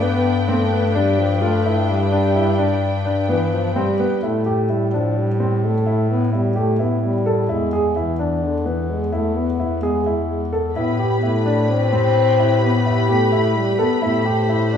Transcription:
Already playing: G2 D4 B4 G5
0.02 B3
0.48 A3 C4
0.72 B3
0.95 G3 D4
1.18 F3
1.42 A3 F4
1.65 E4
1.82 A3
1.90 G3
2.12 D4
2.35 E4
2.58 D4
3.05 D4
3.29 E3 B3
3.53 F3
3.75 G3 C4
4.00 B3
4.23 A2 A3 E4
4.46 G4
4.70 G3 E4
4.94 F3 D4
5.18 G3
5.40 C4
5.64 A3
5.86 E4
6.11 B3
6.33 G3 E4
6.56 A3 G4
6.79 B3 E4
7.03 G3
7.26 A4
7.49 E2 G#3 E4
7.73 G#4
7.96 E3 E4
8.19 D4
8.45 D3
8.65 E3 B3
8.90 G#3
9.12 A3 E4
9.36 B3
9.60 E4
9.82 G#3 G#4
10.06 E4
10.28 G#3
10.53 A4
10.75 A2 B3 E4 G4 B4 B5
10.99 G4
11.22 A3 E4
11.46 D4
11.69 C4
11.93 C4
12.39 E4
12.63 B3
12.86 E4
13.09 A3 G4
13.32 E4
13.57 G3
13.79 B3 A4
14.02 A2 A3 E4 C5
14.25 G4
14.49 E4
14.73 D4

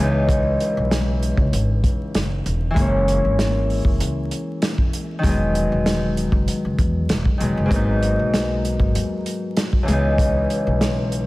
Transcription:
Already playing: C#2 E3
0.00 C#2 G#3 B3 D#4
0.29 kick, closed hi-hat
0.61 closed hi-hat
0.77 B1
0.91 snare, closed hi-hat
1.23 closed hi-hat
1.37 C#2, kick
1.53 G#1, closed hi-hat
1.84 kick, closed hi-hat
2.15 F#1, snare, closed hi-hat
2.46 E1, closed hi-hat
2.71 E3 G#3
2.76 F#1 A#3, kick, closed hi-hat
2.81 C#4
3.08 closed hi-hat
3.25 G#1
3.39 snare, closed hi-hat
3.70 open hi-hat
3.85 F#1, kick
4.00 C#2, closed hi-hat
4.31 closed hi-hat
4.62 snare, closed hi-hat
4.78 kick
4.93 closed hi-hat
5.19 D#3 F#3
5.23 E1 G#3, kick, closed hi-hat
5.28 B3
5.55 closed hi-hat
5.72 E1
5.86 snare, closed hi-hat
6.17 closed hi-hat
6.32 F#1, kick
6.48 closed hi-hat
6.65 F#1
6.78 E2, kick, closed hi-hat
7.09 E1, snare, closed hi-hat
7.25 kick
7.38 E1 D#3 F#3 G#3, closed hi-hat
7.43 B3
7.57 F#1
7.66 G#2 F#3
7.71 G#1 A#3 B3, kick, closed hi-hat
7.76 D#4
8.03 closed hi-hat
8.19 B1
8.34 snare, closed hi-hat
8.65 closed hi-hat
8.80 G#1, kick
8.95 D#2, closed hi-hat
9.26 closed hi-hat
9.57 snare, closed hi-hat
9.73 kick
9.83 C#2 E3
9.88 C#2 G#3 B3, closed hi-hat
9.93 D#4
10.18 kick, closed hi-hat
10.50 closed hi-hat
10.67 B1
10.81 snare, closed hi-hat
11.12 closed hi-hat

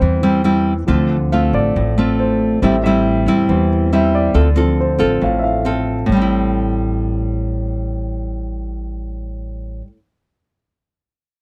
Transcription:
Already playing: G3 C4 E4 G4 C5
0.01 E2 E3
0.23 G3 C4 E4
0.44 G3 C4 E4
0.87 D2 D3 F3 A3 C4 F4
1.32 A3 C4 F4 F5
1.53 A1 D5
1.76 A1 A2
1.98 A3 C4 F4
2.20 C5
2.62 A1 A2 G3 C4 E4 E5
2.84 G3 C4 E4 E5
3.26 E2 G3 C4 E4
3.49 E2 E3 G3 B3 C4
3.93 G3 C4 E4 E5
4.15 D5
4.34 D2 D3 C4 F4 A4
4.56 F3 C4 F4 A4
4.81 C5
4.99 A1 C4 F4 A4
5.21 A1 A2 F5
5.39 E5
5.44 F5
5.65 C4 F4 A4
6.06 A1 A2
6.12 G3
6.17 C4
6.22 E4

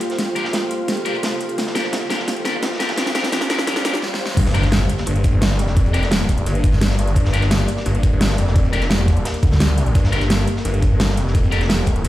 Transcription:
Already playing: A#3 F4 G4 A4 C5 F5, riser
0.00 closed hi-hat
0.10 snare, closed hi-hat
0.18 snare, closed hi-hat
0.28 closed hi-hat
0.35 D4 G4 A#4, closed hi-hat
0.44 snare
0.53 snare, closed hi-hat
0.71 closed hi-hat
0.88 snare, closed hi-hat
0.97 closed hi-hat
1.06 D4 G4 A#4, closed hi-hat
1.15 closed hi-hat
1.23 snare, closed hi-hat
1.32 closed hi-hat
1.40 closed hi-hat
1.49 closed hi-hat
1.58 snare, closed hi-hat
1.67 snare
1.75 D4 G4 A#4, snare, closed hi-hat
1.84 snare
1.93 snare, closed hi-hat
2.02 closed hi-hat
2.10 D4 G4 A#4, snare, closed hi-hat
2.19 snare
2.27 snare, closed hi-hat
2.37 closed hi-hat
2.45 D4 G4 A#4, snare, closed hi-hat
2.63 snare, closed hi-hat
2.73 snare
2.80 D4 G4 A#4, snare, closed hi-hat
2.89 snare, closed hi-hat
2.97 D4 G4 A#4, snare, closed hi-hat
3.06 snare, closed hi-hat
3.15 D4 G4 A#4, snare, closed hi-hat
3.23 snare, closed hi-hat
3.32 D4 G4 A#4, snare, closed hi-hat
3.41 snare
3.50 D4 G4 A#4, snare, closed hi-hat
3.59 snare
3.67 D4 G4 A#4, snare, closed hi-hat
3.76 snare, closed hi-hat
3.85 D4 G4 A#4, snare, closed hi-hat
3.93 snare, closed hi-hat
4.02 snare
4.14 snare
4.26 snare
4.37 G1 A#3 G4 D5, kick, closed hi-hat, crash, impact
4.46 snare
4.54 D4 G4 A#4, closed hi-hat
4.63 snare, closed hi-hat
4.72 snare, closed hi-hat
4.81 closed hi-hat
4.89 closed hi-hat
4.98 snare
5.06 G1, closed hi-hat
5.16 closed hi-hat
5.24 kick, closed hi-hat
5.41 snare, closed hi-hat
5.51 snare
5.59 F1, closed hi-hat
5.67 snare
5.77 kick, closed hi-hat
5.86 closed hi-hat
5.94 D4 G4 A#4, closed hi-hat
6.03 snare, closed hi-hat
6.11 snare, closed hi-hat
6.29 kick, closed hi-hat
6.38 closed hi-hat
6.46 G1, closed hi-hat
6.55 closed hi-hat
6.64 kick, closed hi-hat
6.72 snare, closed hi-hat
6.81 snare, closed hi-hat
6.90 snare
6.99 G1, closed hi-hat
7.07 closed hi-hat
7.16 G1, kick, closed hi-hat
7.25 snare
7.33 D4 G4 A#4, closed hi-hat
7.42 snare, closed hi-hat
7.51 snare, closed hi-hat
7.60 closed hi-hat
7.68 closed hi-hat
7.77 snare
7.85 G1, closed hi-hat
7.95 closed hi-hat
8.03 kick, closed hi-hat
8.21 snare, closed hi-hat
8.29 snare
8.38 F1, closed hi-hat
8.47 snare
8.56 kick, closed hi-hat
8.64 closed hi-hat
8.73 D4 G4 A#4, closed hi-hat
8.81 snare, closed hi-hat
8.90 snare, closed hi-hat
8.99 E1
9.08 kick, closed hi-hat
9.17 closed hi-hat
9.25 snare, closed hi-hat
9.34 closed hi-hat
9.43 D2, kick, closed hi-hat
9.52 snare
9.60 snare, closed hi-hat
9.78 closed hi-hat
9.86 closed hi-hat
9.95 G1 A4, kick, closed hi-hat
10.04 snare
10.12 D4 G4 A#4, closed hi-hat
10.21 snare, closed hi-hat
10.30 snare, closed hi-hat
10.39 closed hi-hat
10.48 closed hi-hat
10.56 snare
10.65 G1, closed hi-hat
10.74 closed hi-hat
10.82 kick, closed hi-hat
11.00 snare, closed hi-hat
11.09 snare
11.17 F1, closed hi-hat
11.27 snare
11.34 kick, closed hi-hat
11.43 closed hi-hat
11.52 D4 G4 A#4, closed hi-hat
11.61 snare, closed hi-hat
11.69 snare, closed hi-hat
11.86 kick, closed hi-hat
11.96 closed hi-hat
12.04 G1, closed hi-hat

